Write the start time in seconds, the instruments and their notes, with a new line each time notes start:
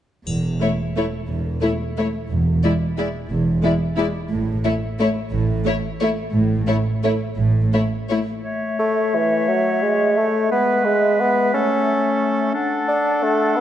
0.26 double bass section E1, cello section E2, triangle
0.61 viola section A3, violin section E4 C#5
0.96 viola section A3, violin section E4 C#5
1.28 double bass section E1, cello section E2
1.61 viola section A3, violin section E4 C#5
1.97 viola section A3, violin section E4 C#5
2.30 double bass section E1, cello section E2
2.64 viola section G#3, violin section E4 D5
2.98 viola section G#3, violin section E4 D5
3.30 double bass section E1, cello section E2
3.63 viola section G#3, violin section E4 D5
3.97 viola section G#3, violin section E4 D5
4.30 double bass section A1, cello section A2
4.64 viola section A3, violin section E4 C#5
4.99 viola section A3, violin section E4 C#5
5.31 double bass section A1, cello section A2
5.66 viola section A3, violin section E4 C#5
6.00 viola section A3, violin section E4 C#5
6.33 double bass section A1, cello section A2
6.67 viola section A3, violin section E4 C#5
7.03 viola section A3, violin section E4 C#5
7.36 double bass section A1, cello section A2
7.72 viola section A3, violin section E4 C#5
8.09 viola section A3, violin section E4 C#5
8.44 clarinet A3, oboe C#5, flute E5
8.80 bassoon A3
9.15 bassoon E3
9.49 bassoon F#3
9.83 bassoon G#3
10.18 bassoon A3
10.51 clarinet G#3, bassoon B3, oboe B4, flute E5
10.85 bassoon G#3
11.20 bassoon B3
11.54 clarinet A3, bassoon C#4, oboe A4
12.54 clarinet D4, oboe A4, flute F#5
12.89 bassoon D4
13.23 bassoon A3
13.56 bassoon B3